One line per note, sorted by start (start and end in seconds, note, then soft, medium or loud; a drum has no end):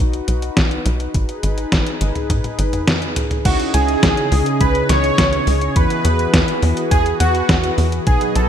0.00 0.22 B1 loud
0.00 1.12 D#4 medium
0.00 1.12 F#4 medium
0.00 1.10 B4 medium
0.13 closed hi-hat soft
0.28 0.50 B1 medium
0.28 closed hi-hat medium
0.42 closed hi-hat soft
0.57 0.79 B1 medium
0.57 kick loud
0.57 snare loud
0.57 closed hi-hat medium
0.71 closed hi-hat soft
0.86 1.08 B1 medium
0.86 closed hi-hat medium
1.00 closed hi-hat soft
1.14 1.26 G#1 loud
1.14 3.43 D#4 medium
1.14 3.43 G#4 medium
1.14 3.43 B4 medium
1.14 kick loud
1.14 closed hi-hat medium
1.29 closed hi-hat soft
1.43 1.66 G#1 medium
1.43 closed hi-hat medium
1.58 closed hi-hat soft
1.72 1.83 G#1 medium
1.72 kick loud
1.72 snare loud
1.72 closed hi-hat medium
1.87 closed hi-hat soft
2.01 2.12 G#1 loud
2.01 closed hi-hat medium
2.15 closed hi-hat soft
2.15 mid tom medium
2.30 2.41 G#2 loud
2.30 kick loud
2.30 closed hi-hat medium
2.30 high tom medium
2.44 closed hi-hat soft
2.44 high tom medium
2.59 2.81 G#1 loud
2.59 closed hi-hat medium
2.73 closed hi-hat soft
2.73 mid tom medium
2.88 snare loud
2.88 closed hi-hat medium
2.88 mid tom medium
3.02 closed hi-hat soft
3.16 closed hi-hat medium
3.16 mid tom medium
3.31 closed hi-hat soft
3.31 mid tom medium
3.45 3.56 C#2 loud
3.45 4.28 C#3 medium
3.45 5.74 C#3 medium
3.45 4.28 C#4 medium
3.45 5.74 C#4 medium
3.45 4.28 D#4 medium
3.45 4.28 E4 medium
3.45 3.58 F#4 medium
3.45 4.28 G#4 loud
3.45 8.03 G#4 medium
3.45 5.74 D#5 medium
3.45 3.58 F#5 medium
3.45 kick loud
3.45 closed hi-hat medium
3.45 crash loud
3.60 closed hi-hat soft
3.74 3.97 C#2 medium
3.74 4.63 G#4 loud
3.74 4.63 G#5 loud
3.74 closed hi-hat medium
3.88 closed hi-hat soft
4.03 4.14 C#2 medium
4.03 kick loud
4.03 snare loud
4.03 closed hi-hat medium
4.17 closed hi-hat soft
4.32 4.43 C#2 loud
4.32 5.72 C#3 medium
4.32 5.72 C#4 medium
4.32 5.72 D#4 medium
4.32 5.72 E4 medium
4.32 5.72 G#4 medium
4.32 open hi-hat medium
4.46 closed hi-hat soft
4.61 4.83 C#2 loud
4.61 4.88 B4 loud
4.61 4.87 B5 loud
4.61 kick loud
4.61 closed hi-hat medium
4.75 closed hi-hat soft
4.89 5.12 C#2 medium
4.89 5.72 C#5 loud
4.89 5.72 C#6 loud
4.89 snare medium
4.89 closed hi-hat loud
5.04 closed hi-hat soft
5.18 5.41 C#2 medium
5.18 kick loud
5.18 snare loud
5.18 closed hi-hat medium
5.33 closed hi-hat soft
5.47 5.70 C#2 medium
5.47 open hi-hat medium
5.61 closed hi-hat soft
5.76 5.87 E2 loud
5.76 8.04 E3 medium
5.76 6.59 E3 loud
5.76 6.59 B3 medium
5.76 6.59 E4 medium
5.76 8.04 F#4 medium
5.76 6.59 F#4 medium
5.76 6.59 G#4 loud
5.76 8.04 B4 medium
5.76 6.59 B4 loud
5.76 6.59 B5 medium
5.76 kick loud
5.76 closed hi-hat medium
5.90 closed hi-hat soft
6.05 6.27 E2 medium
6.05 closed hi-hat loud
6.19 closed hi-hat soft
6.34 6.45 E2 medium
6.34 kick loud
6.34 snare loud
6.34 closed hi-hat medium
6.48 closed hi-hat soft
6.62 6.74 E2 loud
6.62 8.03 E3 medium
6.62 8.03 B3 medium
6.62 8.03 E4 medium
6.62 8.03 F#4 medium
6.62 8.03 G#4 medium
6.62 open hi-hat medium
6.77 closed hi-hat soft
6.91 7.14 E2 loud
6.91 7.04 G#4 loud
6.91 7.04 G#5 loud
6.91 kick loud
6.91 closed hi-hat medium
7.06 closed hi-hat soft
7.20 7.43 E2 medium
7.20 7.74 F#4 loud
7.20 7.74 F#5 loud
7.20 closed hi-hat loud
7.35 closed hi-hat soft
7.49 7.71 E2 medium
7.49 kick loud
7.49 snare loud
7.49 closed hi-hat medium
7.64 closed hi-hat soft
7.78 8.00 E2 loud
7.78 open hi-hat medium
7.92 closed hi-hat soft
8.07 8.18 B1 loud
8.07 8.49 B2 loud
8.07 8.49 F#3 medium
8.07 8.49 B3 medium
8.07 8.49 D#4 medium
8.07 8.49 F#4 medium
8.07 8.34 G#4 loud
8.07 8.49 B4 loud
8.07 8.49 D#5 medium
8.07 8.34 G#5 medium
8.07 kick loud
8.07 closed hi-hat medium
8.21 closed hi-hat soft
8.36 8.49 B1 medium
8.36 8.49 A4 loud
8.36 8.49 A5 loud
8.36 closed hi-hat medium